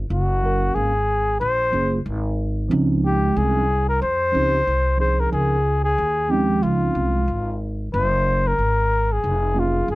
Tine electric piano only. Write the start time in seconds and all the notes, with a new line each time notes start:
0.42 F#3 A#3 C#4 A#4 F5
1.71 F#3 A#3 C#4 F4 G#4
2.69 F3 G#3 C4 C#4 D#4
4.32 F3 C4 C#4 D#4 G4
4.97 F3 C4 C#4 D#4 G#4
5.29 F3 C4 C#4 D#4 A#4
6.28 F3 C4 C#4 D#4
6.32 G#3
9.54 F#3 A#3 C#4 F4 G#4